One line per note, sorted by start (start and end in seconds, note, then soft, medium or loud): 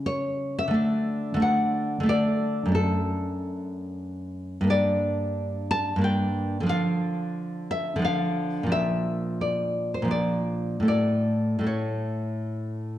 0.00 0.66 C#3 medium
0.00 0.68 G3 soft
0.00 0.69 E4 soft
0.06 0.56 C#5 loud
0.59 1.38 E5 medium
0.68 1.33 D3 medium
0.68 1.35 A3 medium
0.74 1.39 D4 medium
1.34 1.99 D3 medium
1.34 2.02 A3 medium
1.40 2.05 D4 medium
1.40 2.05 F#5 medium
2.00 2.65 D3 medium
2.00 2.67 A3 medium
2.06 2.71 D4 medium
2.06 2.72 D5 loud
2.66 4.60 F#2 medium
2.66 4.63 A3 medium
2.72 4.65 D4 medium
2.72 3.99 A4 loud
4.61 5.95 G2 medium
4.61 5.96 A#3 medium
4.67 5.98 D4 medium
4.67 5.66 D5 loud
5.71 6.02 A5 loud
5.96 6.63 G2 medium
5.96 6.64 A#3 medium
6.01 6.60 D4 medium
6.01 6.67 G5 medium
6.60 7.95 D3 medium
6.60 7.98 F3 medium
6.66 8.00 D4 medium
6.66 7.67 F5 loud
7.71 8.03 E5 loud
7.96 8.65 D3 medium
7.96 8.63 F3 medium
8.02 8.66 D4 medium
8.02 8.69 F5 loud
8.63 10.01 A#2 medium
8.63 10.03 F3 medium
8.69 10.06 D4 soft
8.69 9.38 E5 loud
9.41 9.92 D5 medium
9.94 10.10 C5 medium
10.02 10.82 A#2 medium
10.02 10.79 F3 medium
10.08 10.85 D4 soft
10.08 10.85 D5 medium
10.80 11.57 A2 medium
10.80 11.59 A3 soft
10.85 11.62 E4 soft
10.85 11.64 D5 medium
11.59 12.98 A2 medium
11.59 12.98 A3 soft
11.64 12.98 E4 soft
11.64 12.76 C#5 medium